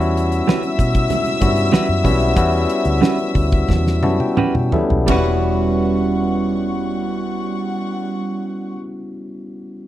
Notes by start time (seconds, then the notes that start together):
Already playing: E2 G3 B3 C#4 E4 F#4 E5 E6
0.01 closed hi-hat
0.17 closed hi-hat
0.32 closed hi-hat
0.47 G3 C#4 F#4 B4, snare, high conga
0.63 closed hi-hat
0.79 B2, kick, closed hi-hat
0.95 kick, closed hi-hat
1.10 snare, closed hi-hat, muted conga, low conga
1.26 closed hi-hat
1.41 G2 G3 B3 C#4 E4 F#4, kick, closed hi-hat, muted conga, low conga
1.57 closed hi-hat
1.72 G3 C#4 F#4 B4, snare, high conga
1.89 F#2
2.04 B1 G3 B3 C#4 E4 F#4, kick, open hi-hat, high conga
2.20 closed hi-hat
2.36 E2 G3 B3 C#4 E4 F#4, kick, closed hi-hat
2.52 closed hi-hat
2.69 closed hi-hat
2.85 D2, closed hi-hat
3.01 G3 C#4 F#4 B4, snare, high conga
3.18 closed hi-hat
3.35 D2, kick, open hi-hat
3.52 kick, closed hi-hat
3.68 E2, kick, snare, muted conga, low conga
3.87 snare
4.03 F#2 G3 B3 C#4 E4 F#4 A5, high tom, muted conga
4.20 G5, high tom
4.37 G3 C#4 F#4 B4 G5, muted fingered electric bass stroke, mid tom, high conga
4.55 B2, mid tom
4.72 G3 B3 C#4 E4 A4 E5, floor tom, high conga
4.90 B1, floor tom
5.06 E1 G3 B3 C#4 E4 F#5 C#6, kick, floor tom, ride bell, muted conga
5.10 F#4 B4